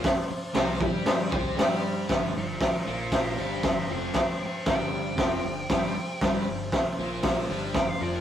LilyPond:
<<
  \new Staff \with { instrumentName = "Lead electric guitar" } { \time 4/4 \key c \lydian \tempo 4 = 117 r1 | r8 <f' d''>8 <f' d''>8 <f' d''>8 <d'' f''>8 <d'' f''>8 <d'' f''>8 <b' g''>8 | <b' g''>8 <b' g''>8 g''2. | r2. g''16 f''16 d''16 bes'16 | }
  \new Staff \with { instrumentName = "Overdriven electric guitar" } { \clef bass \time 4/4 \key c \lydian r4 <c c'>8 <g g'>4 <c c'>8 <g g'>4 | <g, g>8 g,8 r8 <bes, bes>4 <g, g>8 g,8 <f, f>8 | r4 <g, g>4 <f, f>8 g,8 <g, g>8 r8 | <g, g>8 g,8 r8 <bes, bes>4 <g, g>8 g,8 <f, f>8 | }
  \new Staff \with { instrumentName = "Fingered electric bass" } { \clef bass \time 4/4 \key c \lydian r4 c,8 g,4 c,8 g,4 | g,,8 g,,8 r8 bes,,4 g,,8 g,,8 f,,8 | r4 g,,4 f,,8 g,,8 g,,8 r8 | g,,8 g,,8 r8 bes,,4 g,,8 r8 f,,8 | }
  \new DrumStaff \with { instrumentName = "Drums" } \drummode { \time 4/4 <hho bd sn>4 <hho sn>8 bd8 <hho sn>8 bd8 <hho sn>4 | <hho bd sn>4 <hho bd sn>4 <hho bd sn>4 <hho bd sn>4 | <hho bd sn>4 <hho bd sn>4 <hho bd sn>4 <hho bd sn>4 | <hho bd sn>4 <hho bd sn>4 <hho bd sn>4 <hho bd sn>4 | }
>>